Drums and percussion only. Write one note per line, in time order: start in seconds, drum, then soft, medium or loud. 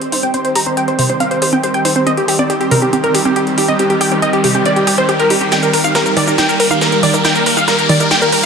0.02 closed hi-hat soft
0.12 open hi-hat medium
0.23 closed hi-hat soft
0.34 closed hi-hat medium
0.45 closed hi-hat soft
0.55 open hi-hat loud
0.66 closed hi-hat soft
0.77 closed hi-hat medium
0.88 closed hi-hat soft
0.99 open hi-hat medium
1.09 closed hi-hat soft
1.20 closed hi-hat medium
1.31 closed hi-hat soft
1.42 open hi-hat loud
1.53 closed hi-hat soft
1.63 closed hi-hat medium
1.74 closed hi-hat soft
1.85 open hi-hat medium
1.96 closed hi-hat soft
2.07 closed hi-hat medium
2.17 closed hi-hat soft
2.28 open hi-hat loud
2.50 closed hi-hat medium
2.61 closed hi-hat soft
2.71 open hi-hat medium
2.82 closed hi-hat soft
2.93 closed hi-hat medium
3.04 closed hi-hat soft
3.15 open hi-hat loud
3.36 closed hi-hat medium
3.47 closed hi-hat soft
3.58 open hi-hat medium
3.68 closed hi-hat soft
3.79 closed hi-hat medium
3.90 closed hi-hat soft
4.01 open hi-hat loud
4.12 closed hi-hat soft
4.22 closed hi-hat medium
4.33 closed hi-hat soft
4.44 open hi-hat loud
4.66 closed hi-hat medium
4.76 closed hi-hat soft
4.87 open hi-hat loud
4.98 closed hi-hat soft
5.09 closed hi-hat medium
5.20 closed hi-hat soft
5.30 open hi-hat medium
5.52 snare soft
5.52 closed hi-hat medium
5.52 shaker medium
5.63 closed hi-hat soft
5.63 shaker soft
5.73 open hi-hat loud
5.84 closed hi-hat soft
5.84 shaker medium
5.95 snare medium
5.95 closed hi-hat medium
5.95 shaker medium
6.06 closed hi-hat soft
6.06 shaker soft
6.17 open hi-hat medium
6.27 shaker medium
6.38 snare medium
6.38 closed hi-hat medium
6.38 shaker medium
6.49 closed hi-hat soft
6.49 shaker soft
6.60 open hi-hat loud
6.71 closed hi-hat soft
6.71 shaker medium
6.81 snare medium
6.81 closed hi-hat medium
6.81 shaker medium
6.92 closed hi-hat soft
6.92 shaker soft
7.03 open hi-hat medium
7.14 shaker medium
7.25 snare medium
7.25 closed hi-hat medium
7.25 shaker medium
7.35 closed hi-hat soft
7.35 shaker soft
7.46 open hi-hat loud
7.57 shaker medium
7.68 snare medium
7.68 closed hi-hat medium
7.68 shaker medium
7.79 closed hi-hat soft
7.79 shaker soft
7.89 open hi-hat medium
8.00 closed hi-hat soft
8.00 shaker medium
8.11 snare medium
8.11 closed hi-hat medium
8.11 shaker medium
8.22 closed hi-hat soft
8.22 shaker soft
8.32 open hi-hat loud